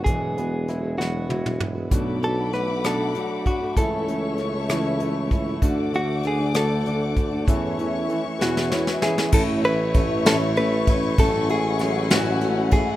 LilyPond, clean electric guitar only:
\new Staff \with { instrumentName = "Clean electric guitar" } { \time 6/8 \key a \major \tempo 4. = 65 gis'4. fis'4 r8 | r8 a'8 b'8 a'4 fis'8 | a'2~ a'8 r8 | r8 fis'8 gis'8 a'4.~ |
a'4. fis'4 gis'8 | a'8 b'4 a'8 b'4 | a'8 gis'4 fis'4 gis'8 | }